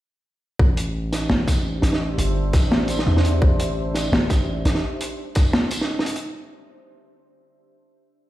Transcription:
0.59 1.29 A1 loud
0.59 4.83 D4 medium
0.59 kick loud
0.68 4.83 G4 medium
0.77 closed hi-hat medium
1.09 4.83 C5 medium
1.09 snare medium
1.09 tambourine medium
1.13 4.83 E5 medium
1.13 closed hi-hat medium
1.30 1.82 A1 loud
1.30 snare loud
1.48 kick medium
1.48 snare medium
1.48 closed hi-hat medium
1.48 tambourine medium
1.82 2.17 A1 loud
1.82 snare medium
1.82 closed hi-hat medium
1.93 snare medium
2.18 2.52 G1 loud
2.18 closed hi-hat medium
2.53 3.05 A1 medium
2.53 kick loud
2.53 snare soft
2.53 closed hi-hat medium
2.53 tambourine medium
2.71 snare loud
2.71 snare medium
2.88 closed hi-hat medium
2.88 tambourine medium
2.99 snare medium
3.07 3.41 E2 loud
3.17 snare medium
3.25 closed hi-hat medium
3.42 4.11 A1 loud
3.42 kick loud
3.60 closed hi-hat medium
3.95 snare medium
3.95 closed hi-hat medium
3.95 tambourine medium
4.12 4.64 A1 loud
4.12 snare loud
4.30 kick medium
4.30 snare soft
4.30 closed hi-hat medium
4.30 tambourine medium
4.65 4.82 A1 loud
4.65 snare medium
4.65 closed hi-hat medium
4.75 snare medium
5.01 closed hi-hat medium
5.35 kick loud
5.35 snare soft
5.35 closed hi-hat medium
5.35 tambourine medium
5.53 snare loud
5.53 snare medium
5.71 closed hi-hat medium
5.71 tambourine medium
5.81 snare medium
5.99 snare medium
6.06 closed hi-hat medium
6.16 closed hi-hat medium

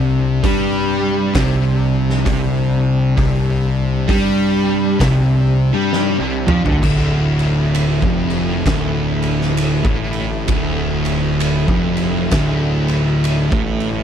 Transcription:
0.00 0.40 C2 loud
0.00 0.42 C3 loud
0.00 6.79 C3 medium
0.00 6.79 G3 medium
0.00 6.79 D4 medium
0.43 1.31 G2 loud
0.43 1.34 G3 loud
0.43 kick loud
0.43 open hi-hat medium
1.34 2.22 C2 medium
1.34 2.24 C3 loud
1.34 kick loud
1.34 snare loud
1.34 open hi-hat medium
2.09 snare soft
2.25 3.13 C2 loud
2.25 3.16 C3 loud
2.25 kick loud
2.25 open hi-hat medium
3.17 4.05 C2 loud
3.17 4.08 C3 loud
3.17 kick loud
3.17 open hi-hat medium
4.08 4.96 G2 medium
4.08 4.98 G3 loud
4.08 kick loud
4.08 open hi-hat medium
4.99 5.70 C2 medium
4.99 5.72 C3 loud
4.99 kick loud
4.99 snare loud
4.99 open hi-hat medium
5.73 6.16 G2 medium
5.73 6.17 G3 loud
5.93 snare medium
6.17 6.45 C2 medium
6.17 6.44 C3 loud
6.47 6.63 F2 loud
6.47 6.64 F3 loud
6.47 mid tom loud
6.65 6.81 D2 medium
6.65 6.81 D3 loud
6.65 floor tom loud
6.81 7.98 D1 loud
6.81 8.01 D2 loud
6.81 14.03 D3 medium
6.81 14.03 A3 medium
6.81 14.03 E4 medium
6.81 kick loud
6.81 crash loud
7.39 ride medium
7.75 ride loud
8.02 8.62 F1 loud
8.02 8.65 F2 loud
8.02 kick loud
8.30 ride medium
8.65 9.81 D1 medium
8.65 9.84 D2 loud
8.65 kick loud
8.65 snare loud
8.65 ride medium
9.22 ride medium
9.41 snare soft
9.57 ride loud
9.85 10.45 A1 medium
9.85 10.47 A2 medium
9.85 kick loud
10.13 ride medium
10.48 11.64 D1 medium
10.48 11.66 D2 loud
10.48 kick loud
10.48 ride loud
11.05 ride medium
11.40 ride loud
11.68 12.29 F1 loud
11.68 12.31 F2 loud
11.68 kick loud
11.97 ride medium
12.31 13.48 D1 loud
12.31 13.51 D2 loud
12.31 kick loud
12.31 snare loud
12.31 ride loud
12.88 ride medium
13.24 ride medium
13.52 14.03 A1 medium
13.52 14.03 A2 loud
13.52 kick loud
13.80 ride medium

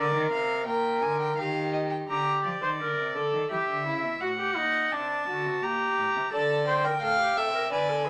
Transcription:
0.00 0.14 D3 loud
0.00 0.66 A#4 medium
0.00 0.31 D5 medium
0.15 0.32 D#3 loud
0.32 0.69 C3 loud
0.32 0.66 F5 medium
0.67 1.04 A#2 medium
0.67 1.40 A#4 medium
0.67 1.04 G5 medium
1.02 1.37 D3 medium
1.02 1.19 G#5 medium
1.20 1.37 G5 medium
1.37 2.07 D#3 loud
1.37 2.09 G4 medium
1.37 1.73 F5 medium
1.73 1.80 D#5 medium
1.90 1.98 G5 medium
2.09 2.42 D3 medium
2.09 2.59 G4 loud
2.09 2.42 A#5 medium
2.44 2.51 F3 medium
2.44 3.49 D5 medium
2.62 2.82 D#3 medium
2.62 2.69 C5 medium
2.80 2.97 D3 medium
2.80 3.15 A#4 medium
2.97 3.17 C3 medium
3.15 3.32 D3 medium
3.15 3.51 A4 medium
3.33 3.40 D#3 medium
3.51 3.58 E3 medium
3.51 3.86 G4 medium
3.51 4.22 E5 medium
3.69 3.88 D3 medium
3.86 4.06 C#3 medium
3.86 4.21 E4 medium
4.04 4.21 B2 medium
4.21 4.57 A2 medium
4.21 4.29 F#4 loud
4.21 4.94 F#5 medium
4.39 4.58 G4 medium
4.57 4.92 A#2 medium
4.57 4.94 D#4 loud
4.92 5.28 C3 medium
4.92 5.28 D4 medium
4.92 5.65 A5 medium
5.28 5.47 D3 medium
5.28 5.64 F#4 loud
5.46 5.63 C3 medium
5.63 5.97 A#2 medium
5.63 6.32 G4 loud
5.63 6.32 A#5 medium
5.98 6.05 A2 medium
6.16 6.22 C3 medium
6.32 7.01 D3 medium
6.32 6.67 A4 loud
6.32 6.86 D5 loud
6.32 6.67 A5 medium
6.67 6.86 C5 medium
6.67 7.70 G5 medium
6.85 7.04 A#4 medium
6.85 7.02 G5 medium
7.02 7.37 A2 medium
7.02 7.19 A4 medium
7.02 7.39 F5 loud
7.20 7.38 G4 medium
7.37 7.73 C3 medium
7.37 7.53 A4 medium
7.37 7.71 E5 loud
7.54 7.61 A#4 medium
7.71 8.08 D3 medium
7.71 7.90 B4 medium
7.71 8.06 D5 loud
7.71 8.10 G#5 medium
7.89 8.07 A4 medium
8.05 8.10 G#4 medium

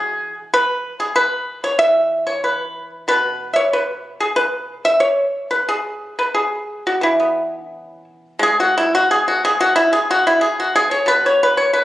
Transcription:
0.00 1.16 E3 soft
0.00 0.34 G#4 medium
0.54 0.98 B4 medium
1.00 1.15 G#4 medium
1.16 1.60 B4 medium
1.64 1.78 C#5 medium
1.79 3.73 E3 soft
1.79 2.24 E5 medium
2.27 2.43 C#5 medium
2.44 2.89 B4 medium
3.08 5.02 B2 soft
3.08 3.50 B4 medium
3.53 3.72 C#5 medium
3.53 3.58 E5 medium
3.73 4.19 B4 medium
4.20 4.36 G#4 medium
4.36 4.82 B4 medium
4.85 5.01 E5 medium
5.00 5.47 C#5 medium
5.51 5.67 B4 medium
5.69 6.15 G#4 medium
6.19 6.34 B4 medium
6.35 6.82 G#4 medium
6.87 7.02 F#4 soft
7.01 9.09 E3 soft
7.01 7.70 E4 medium
7.20 8.59 B3 soft
7.70 8.04 C#4 medium
8.39 10.42 G#3 medium
8.39 8.59 G#4 medium
8.60 8.75 F#4 medium
8.78 8.93 E4 medium
8.95 9.10 F#4 medium
9.11 9.26 G#4 medium
9.28 9.43 F#4 medium
9.45 9.60 G#4 medium
9.60 9.75 F#4 medium
9.76 9.92 E4 medium
9.93 10.09 G#4 medium
10.11 10.26 F#4 medium
10.27 10.41 E4 medium
10.41 10.58 G#4 medium
10.60 10.75 F#4 medium
10.76 10.91 G#4 medium
10.91 11.07 C#5 medium
11.06 11.84 B2 medium
11.06 11.23 B4 medium
11.26 11.41 C#5 medium
11.43 11.57 B4 medium
11.57 11.72 C#5 medium
11.73 11.84 B4 medium

